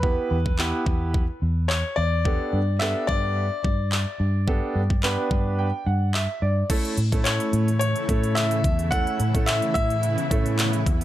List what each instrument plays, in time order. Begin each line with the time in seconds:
Already playing: fingered electric bass E2, grand piano B4
0.03 grand piano B3 E4 G4 B4, kick
0.31 fingered electric bass E2
0.46 kick
0.58 grand piano B3 E4 G4 B4, clap
0.86 fingered electric bass E2, kick
1.14 kick
1.42 fingered electric bass E2
1.68 grand piano C#5, clap
1.96 fingered electric bass E2, grand piano D5
2.25 grand piano B3 D4 G4 A4, kick
2.53 fingered electric bass G2
2.79 grand piano B3 D4 G4 A4 E5, clap
3.07 fingered electric bass G2, grand piano D5, kick
3.65 fingered electric bass G2, kick
3.92 clap
4.20 fingered electric bass G2
4.47 grand piano B3 D4 G4 A4, kick
4.75 fingered electric bass G2
4.90 kick
5.03 grand piano B3 D4 G4 B4, clap
5.31 fingered electric bass G2, grand piano B5, kick
5.59 grand piano G5
5.86 fingered electric bass G2, grand piano F#5
6.14 grand piano E5, clap
6.42 fingered electric bass G2, grand piano D5
6.70 ambient pad C#3 E3 A3 E4, grand piano A3 C#4 E4 A4, kick, closed hi-hat, crash
6.85 closed hi-hat
6.97 fingered electric bass A2, closed hi-hat
7.12 grand piano A3 C#4 E4 A4, kick, closed hi-hat
7.24 grand piano C#5, clap, closed hi-hat
7.40 closed hi-hat
7.53 fingered electric bass A2, closed hi-hat
7.68 closed hi-hat
7.79 grand piano C#5, closed hi-hat
7.96 closed hi-hat
8.08 fingered electric bass A2, grand piano A3 C#4 E4 A4, kick, closed hi-hat
8.23 closed hi-hat
8.35 grand piano E5, clap, closed hi-hat
8.51 closed hi-hat
8.64 fingered electric bass E2, kick, closed hi-hat
8.79 closed hi-hat
8.91 grand piano A3 C#4 E4 A4 F#5, ambient pad B3, kick, closed hi-hat
9.07 closed hi-hat
9.20 fingered electric bass A2, closed hi-hat
9.34 grand piano A3 C#4 E4 A4, kick, closed hi-hat
9.46 grand piano E5, clap, closed hi-hat
9.62 closed hi-hat
9.74 fingered electric bass A2, grand piano E5, kick, closed hi-hat
9.90 closed hi-hat
10.03 closed hi-hat
10.18 closed hi-hat
10.31 fingered electric bass A2, grand piano A3 C#4 E4 A4, kick, closed hi-hat
10.46 closed hi-hat
10.59 clap, closed hi-hat
10.73 closed hi-hat
10.86 fingered electric bass E2, kick, closed hi-hat
11.01 closed hi-hat